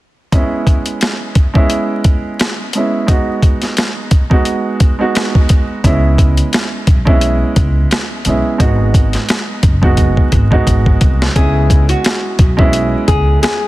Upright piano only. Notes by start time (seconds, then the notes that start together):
0.32 G#3 B3 C#4 E4
1.53 G#3 B3 C#4 E4
2.75 G#3 B3 C#4 E4
3.06 G#3 B3 D#4 F#4
4.30 G#3 B3 D#4 F#4
4.99 G#3 B3 D#4 F#4
5.84 G#3 B3 C#4 E4
7.05 G#3 B3 C#4 E4
8.26 G#3 B3 C#4 E4
8.58 G#3 B3 D#4 F#4
9.82 G#3 B3 D#4 F#4
10.50 G#3 B3 D#4 F#4
11.35 G#3 B3 C#4 E4
12.57 G#3 B3 C#4 E4